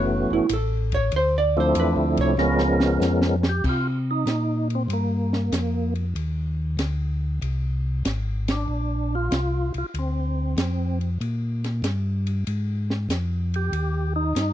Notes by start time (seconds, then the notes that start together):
Already playing: F#1 E3 A3 B3 C#4 F#4 C#5
0.31 F#1 E4
0.49 A1, hi-hat pedal, ride
0.53 A4
0.92 C#5, kick, ride
1.12 D2, ride
1.16 C5
1.38 D5
1.56 F3 A3 C4 D4 E4 C5
1.75 E2, hi-hat pedal, ride
1.80 B4
1.96 D2
2.17 C2, kick, ride
2.21 C#5
2.37 C#2 F3 G#3 B3 C#4 A#4, snare
2.58 snare
2.80 snare
3.00 F2, snare, hi-hat pedal
3.22 snare
3.43 snare
3.49 G4
3.64 C3, kick, crash
3.69 F4
4.11 D#4
4.26 A#2, snare, hi-hat pedal, ride
4.70 ride
4.75 C4
4.89 G2, ride
4.93 A#3
5.33 snare
5.52 F2, snare, hi-hat pedal, ride
5.95 ride
6.15 D#2, ride
6.77 D2, snare, hi-hat pedal, ride
7.42 C2, ride
8.05 G#1, snare, hi-hat pedal, ride
8.48 D4, snare, ride
8.68 A#1
9.15 F4
9.31 C2, snare, hi-hat pedal, ride
9.74 C2 F4, ride
9.94 D2, ride
9.99 C4
10.57 F2, snare, hi-hat pedal, ride
11.01 ride
11.21 A#2, ride
11.64 snare, ride
11.82 G2, snare, hi-hat pedal, ride
12.27 ride
12.47 G#2, ride
12.90 snare
13.09 F2, snare, hi-hat pedal, ride
13.54 G4, ride
13.72 D#2, ride
14.16 D#4
14.35 G2, snare, hi-hat pedal, ride